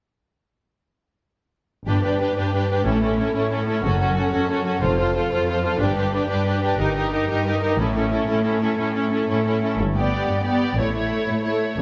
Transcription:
1.86 2.17 G1 soft
1.86 2.31 G2 soft
1.86 2.03 D4 soft
1.86 2.02 G4 soft
1.86 2.02 B4 soft
2.03 2.20 D4 soft
2.03 2.18 G4 soft
2.03 2.19 B4 soft
2.19 2.35 D4 soft
2.19 2.35 G4 soft
2.19 2.36 B4 soft
2.36 2.80 G2 soft
2.36 2.52 D4 soft
2.36 2.53 G4 soft
2.36 2.53 B4 soft
2.53 2.69 D4 soft
2.53 2.70 G4 soft
2.53 2.69 B4 soft
2.70 2.85 D4 soft
2.70 2.87 G4 soft
2.70 2.87 B4 soft
2.85 3.16 A1 soft
2.85 3.29 A2 soft
2.85 3.01 C#4 soft
2.85 3.01 E4 soft
2.85 3.01 A4 soft
3.02 3.18 C#4 soft
3.02 3.18 E4 soft
3.02 3.18 A4 soft
3.19 3.33 C#4 soft
3.19 3.34 E4 soft
3.19 3.35 A4 soft
3.34 3.79 A2 soft
3.34 3.50 C#4 soft
3.34 3.50 E4 soft
3.34 3.49 A4 soft
3.50 3.67 C#4 soft
3.50 3.67 E4 soft
3.50 3.65 A4 soft
3.66 3.84 C#4 soft
3.66 3.84 E4 soft
3.66 3.82 A4 soft
3.83 4.14 F#1 soft
3.83 4.28 F#2 soft
3.83 4.01 C#4 soft
3.83 3.99 F#4 soft
3.83 3.99 A4 soft
4.00 4.17 C#4 soft
4.00 4.14 F#4 soft
4.00 4.15 A4 soft
4.15 4.33 C#4 soft
4.15 4.31 F#4 soft
4.15 4.32 A4 soft
4.32 4.77 F#2 soft
4.32 4.48 C#4 soft
4.32 4.49 F#4 soft
4.32 4.48 A4 soft
4.49 4.65 C#4 soft
4.49 4.64 F#4 soft
4.49 4.65 A4 soft
4.65 4.82 C#4 soft
4.65 4.82 F#4 soft
4.65 4.82 A4 soft
4.81 5.13 F1 soft
4.81 5.27 F2 soft
4.81 4.98 F4 soft
4.81 4.97 A4 soft
4.81 4.97 C5 soft
4.98 5.14 F4 soft
4.98 5.15 A4 soft
4.98 5.13 C5 soft
5.15 5.31 F4 soft
5.15 5.31 A4 soft
5.15 5.30 C5 soft
5.31 5.75 F2 soft
5.31 5.47 F4 soft
5.31 5.48 A4 soft
5.31 5.48 C5 soft
5.48 5.63 F4 soft
5.48 5.65 A4 soft
5.48 5.63 C5 soft
5.64 5.81 F4 soft
5.64 5.81 A4 soft
5.64 5.80 C5 soft
5.80 6.12 G1 soft
5.80 6.24 G2 soft
5.80 5.95 D4 soft
5.80 5.96 G4 soft
5.80 5.96 B4 soft
5.96 6.11 D4 soft
5.96 6.13 G4 soft
5.96 6.12 B4 soft
6.13 6.28 D4 soft
6.13 6.27 G4 soft
6.13 6.28 B4 soft
6.29 6.74 G2 soft
6.29 6.44 D4 soft
6.29 6.45 G4 soft
6.29 6.45 B4 soft
6.45 6.61 D4 soft
6.45 6.62 G4 soft
6.45 6.60 B4 soft
6.61 6.79 D4 soft
6.61 6.78 G4 soft
6.61 6.78 B4 soft
6.79 7.10 G1 soft
6.79 7.23 G2 soft
6.79 6.95 D#4 soft
6.79 6.95 G4 soft
6.79 6.94 A#4 soft
6.96 7.12 D#4 soft
6.96 7.12 G4 soft
6.96 7.11 A#4 soft
7.12 7.29 D#4 soft
7.12 7.28 G4 soft
7.12 7.29 A#4 soft
7.29 7.72 G2 soft
7.29 7.46 D#4 soft
7.29 7.45 G4 soft
7.29 7.46 A#4 soft
7.46 7.63 D#4 soft
7.46 7.60 G4 soft
7.46 7.61 A#4 soft
7.61 7.79 D#4 soft
7.61 7.78 G4 soft
7.61 7.78 A#4 soft
7.78 8.09 A1 soft
7.78 8.22 A2 soft
7.78 7.96 C#4 soft
7.78 7.92 E4 soft
7.78 7.93 A4 soft
7.94 8.12 C#4 soft
7.94 8.09 E4 soft
7.94 8.11 A4 soft
8.10 8.29 C#4 soft
8.10 8.26 E4 soft
8.10 8.26 A4 soft
8.27 8.72 A2 soft
8.27 8.44 C#4 soft
8.27 8.43 E4 soft
8.27 8.42 A4 soft
8.44 8.60 C#4 soft
8.44 8.60 E4 soft
8.44 8.60 A4 soft
8.61 8.77 C#4 soft
8.61 8.77 E4 soft
8.61 8.77 A4 soft
8.78 9.22 A2 soft
8.78 8.93 C#4 soft
8.78 8.94 E4 soft
8.78 8.93 A4 soft
8.95 9.09 C#4 soft
8.95 9.11 E4 soft
8.95 9.11 A4 soft
9.10 9.27 C#4 soft
9.10 9.28 E4 soft
9.10 9.28 A4 soft
9.28 9.73 A2 soft
9.28 9.44 C#4 soft
9.28 9.45 E4 soft
9.28 9.45 A4 soft
9.45 9.60 C#4 soft
9.45 9.62 E4 soft
9.45 9.62 A4 soft
9.61 9.78 C#4 soft
9.61 9.79 E4 soft
9.61 9.79 A4 soft
9.78 10.09 G1 soft
9.78 10.20 G2 soft
9.95 10.43 B3 soft
9.95 10.43 G4 soft
9.95 10.44 D5 soft
10.28 10.69 G2 soft
10.45 10.77 B3 soft
10.45 10.77 G4 soft
10.45 10.77 D5 soft
10.77 11.08 A1 soft
10.77 11.19 A2 soft
10.77 10.93 A3 soft
10.77 10.92 E4 soft
10.77 10.93 C#5 soft
10.93 11.42 A3 soft
10.93 11.42 E4 soft
10.93 11.42 C#5 soft
11.28 11.69 A2 soft
11.43 11.76 A3 soft
11.43 11.76 E4 soft
11.43 11.76 C#5 soft
11.77 11.82 F1 soft
11.77 11.82 F2 soft

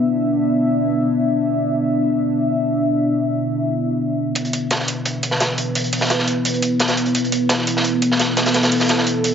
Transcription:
0.00 4.32 B3 medium
0.00 4.32 D4 medium
0.00 4.34 E5 medium
4.35 9.34 B3 medium
4.35 9.34 E4 medium
4.35 7.14 B4 medium
4.35 closed hi-hat medium
4.45 closed hi-hat soft
4.53 closed hi-hat medium
4.71 snare loud
4.71 closed hi-hat medium
4.80 snare soft
4.88 closed hi-hat medium
4.88 closed hi-hat loud
5.05 closed hi-hat medium
5.23 closed hi-hat loud
5.23 closed hi-hat medium
5.31 snare soft
5.40 snare loud
5.40 closed hi-hat medium
5.58 closed hi-hat medium
5.75 closed hi-hat medium
5.84 closed hi-hat soft
5.93 closed hi-hat medium
5.93 open hi-hat medium
6.01 snare medium
6.10 snare loud
6.10 closed hi-hat medium
6.19 snare medium
6.27 closed hi-hat medium
6.45 closed hi-hat medium
6.54 closed hi-hat soft
6.62 closed hi-hat loud
6.62 closed hi-hat medium
6.80 snare loud
6.80 closed hi-hat medium
6.88 snare loud
6.88 closed hi-hat medium
6.97 closed hi-hat medium
7.06 closed hi-hat soft
7.15 9.34 A4 medium
7.15 closed hi-hat medium
7.25 closed hi-hat soft
7.32 closed hi-hat medium
7.49 snare loud
7.49 closed hi-hat medium
7.58 snare soft
7.67 closed hi-hat medium
7.77 snare soft
7.84 closed hi-hat medium
8.02 closed hi-hat medium
8.12 snare medium
8.19 snare loud
8.19 closed hi-hat medium
8.37 snare loud
8.37 closed hi-hat medium
8.46 snare loud
8.46 closed hi-hat medium
8.54 snare loud
8.54 closed hi-hat medium
8.63 snare loud
8.63 closed hi-hat medium
8.72 closed hi-hat medium
8.72 open hi-hat medium
8.80 snare medium
8.89 snare loud
8.89 closed hi-hat medium
8.89 closed hi-hat loud
8.98 snare medium
9.07 closed hi-hat medium
9.24 closed hi-hat medium

